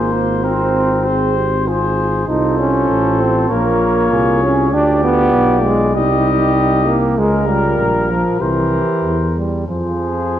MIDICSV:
0, 0, Header, 1, 6, 480
1, 0, Start_track
1, 0, Key_signature, -4, "minor"
1, 0, Tempo, 613497
1, 1784, Time_signature, 4, 2, 24, 8
1, 6097, Tempo, 638298
1, 8053, End_track
2, 0, Start_track
2, 0, Title_t, "Trumpet"
2, 0, Program_c, 0, 56
2, 0, Note_on_c, 0, 72, 46
2, 341, Note_on_c, 0, 70, 49
2, 353, Note_off_c, 0, 72, 0
2, 816, Note_on_c, 0, 72, 53
2, 828, Note_off_c, 0, 70, 0
2, 1300, Note_off_c, 0, 72, 0
2, 1311, Note_on_c, 0, 72, 51
2, 1777, Note_off_c, 0, 72, 0
2, 1782, Note_on_c, 0, 72, 49
2, 2730, Note_on_c, 0, 73, 62
2, 2742, Note_off_c, 0, 72, 0
2, 3691, Note_off_c, 0, 73, 0
2, 3696, Note_on_c, 0, 74, 51
2, 4649, Note_on_c, 0, 75, 60
2, 4661, Note_off_c, 0, 74, 0
2, 5486, Note_off_c, 0, 75, 0
2, 5619, Note_on_c, 0, 70, 53
2, 6559, Note_on_c, 0, 72, 53
2, 6570, Note_off_c, 0, 70, 0
2, 7303, Note_off_c, 0, 72, 0
2, 7521, Note_on_c, 0, 72, 43
2, 8053, Note_off_c, 0, 72, 0
2, 8053, End_track
3, 0, Start_track
3, 0, Title_t, "Flugelhorn"
3, 0, Program_c, 1, 56
3, 0, Note_on_c, 1, 68, 59
3, 94, Note_on_c, 1, 72, 52
3, 106, Note_off_c, 1, 68, 0
3, 817, Note_off_c, 1, 72, 0
3, 822, Note_on_c, 1, 72, 55
3, 1313, Note_on_c, 1, 68, 49
3, 1324, Note_off_c, 1, 72, 0
3, 1789, Note_off_c, 1, 68, 0
3, 1798, Note_on_c, 1, 69, 59
3, 2744, Note_on_c, 1, 70, 60
3, 2756, Note_off_c, 1, 69, 0
3, 3231, Note_on_c, 1, 68, 53
3, 3243, Note_off_c, 1, 70, 0
3, 3703, Note_on_c, 1, 67, 69
3, 3715, Note_off_c, 1, 68, 0
3, 4508, Note_off_c, 1, 67, 0
3, 4641, Note_on_c, 1, 67, 69
3, 5589, Note_off_c, 1, 67, 0
3, 5612, Note_on_c, 1, 70, 61
3, 6543, Note_off_c, 1, 70, 0
3, 6554, Note_on_c, 1, 70, 57
3, 7285, Note_off_c, 1, 70, 0
3, 7513, Note_on_c, 1, 68, 52
3, 8053, Note_off_c, 1, 68, 0
3, 8053, End_track
4, 0, Start_track
4, 0, Title_t, "French horn"
4, 0, Program_c, 2, 60
4, 0, Note_on_c, 2, 65, 44
4, 341, Note_off_c, 2, 65, 0
4, 346, Note_on_c, 2, 65, 47
4, 831, Note_on_c, 2, 68, 47
4, 842, Note_off_c, 2, 65, 0
4, 1066, Note_on_c, 2, 67, 54
4, 1078, Note_off_c, 2, 68, 0
4, 1305, Note_on_c, 2, 65, 55
4, 1317, Note_off_c, 2, 67, 0
4, 1785, Note_off_c, 2, 65, 0
4, 1791, Note_on_c, 2, 65, 54
4, 2713, Note_off_c, 2, 65, 0
4, 2745, Note_on_c, 2, 65, 60
4, 3682, Note_off_c, 2, 65, 0
4, 3705, Note_on_c, 2, 65, 61
4, 4637, Note_off_c, 2, 65, 0
4, 4656, Note_on_c, 2, 63, 58
4, 5483, Note_off_c, 2, 63, 0
4, 5616, Note_on_c, 2, 65, 52
4, 6562, Note_on_c, 2, 67, 52
4, 6573, Note_off_c, 2, 65, 0
4, 7304, Note_off_c, 2, 67, 0
4, 7524, Note_on_c, 2, 65, 41
4, 8053, Note_off_c, 2, 65, 0
4, 8053, End_track
5, 0, Start_track
5, 0, Title_t, "Trombone"
5, 0, Program_c, 3, 57
5, 0, Note_on_c, 3, 58, 70
5, 342, Note_on_c, 3, 60, 81
5, 354, Note_off_c, 3, 58, 0
5, 1546, Note_off_c, 3, 60, 0
5, 1783, Note_on_c, 3, 63, 77
5, 2028, Note_on_c, 3, 61, 84
5, 2039, Note_off_c, 3, 63, 0
5, 2509, Note_on_c, 3, 60, 84
5, 2521, Note_off_c, 3, 61, 0
5, 2748, Note_on_c, 3, 58, 81
5, 2759, Note_off_c, 3, 60, 0
5, 3464, Note_off_c, 3, 58, 0
5, 3472, Note_on_c, 3, 61, 83
5, 3709, Note_on_c, 3, 62, 88
5, 3721, Note_off_c, 3, 61, 0
5, 3942, Note_off_c, 3, 62, 0
5, 3947, Note_on_c, 3, 59, 101
5, 4416, Note_on_c, 3, 56, 85
5, 4427, Note_off_c, 3, 59, 0
5, 4661, Note_on_c, 3, 55, 76
5, 4673, Note_off_c, 3, 56, 0
5, 5373, Note_on_c, 3, 58, 85
5, 5384, Note_off_c, 3, 55, 0
5, 5624, Note_on_c, 3, 56, 84
5, 5635, Note_off_c, 3, 58, 0
5, 5858, Note_on_c, 3, 55, 70
5, 5870, Note_off_c, 3, 56, 0
5, 6332, Note_on_c, 3, 53, 67
5, 6344, Note_off_c, 3, 55, 0
5, 6554, Note_off_c, 3, 53, 0
5, 6558, Note_on_c, 3, 52, 72
5, 7150, Note_off_c, 3, 52, 0
5, 7277, Note_on_c, 3, 55, 56
5, 7519, Note_off_c, 3, 55, 0
5, 7523, Note_on_c, 3, 53, 60
5, 8053, Note_off_c, 3, 53, 0
5, 8053, End_track
6, 0, Start_track
6, 0, Title_t, "Bass trombone"
6, 0, Program_c, 4, 57
6, 0, Note_on_c, 4, 32, 51
6, 1751, Note_off_c, 4, 32, 0
6, 1787, Note_on_c, 4, 36, 58
6, 2231, Note_off_c, 4, 36, 0
6, 2265, Note_on_c, 4, 33, 56
6, 2733, Note_off_c, 4, 33, 0
6, 2739, Note_on_c, 4, 34, 57
6, 3211, Note_off_c, 4, 34, 0
6, 3222, Note_on_c, 4, 36, 58
6, 3696, Note_on_c, 4, 38, 64
6, 3708, Note_off_c, 4, 36, 0
6, 4171, Note_on_c, 4, 35, 60
6, 4182, Note_off_c, 4, 38, 0
6, 4650, Note_on_c, 4, 36, 67
6, 4662, Note_off_c, 4, 35, 0
6, 5616, Note_on_c, 4, 37, 67
6, 5628, Note_off_c, 4, 36, 0
6, 6090, Note_off_c, 4, 37, 0
6, 6095, Note_on_c, 4, 34, 51
6, 6429, Note_off_c, 4, 34, 0
6, 6557, Note_on_c, 4, 36, 55
6, 6861, Note_off_c, 4, 36, 0
6, 7032, Note_on_c, 4, 40, 44
6, 7492, Note_off_c, 4, 40, 0
6, 7522, Note_on_c, 4, 41, 43
6, 8053, Note_off_c, 4, 41, 0
6, 8053, End_track
0, 0, End_of_file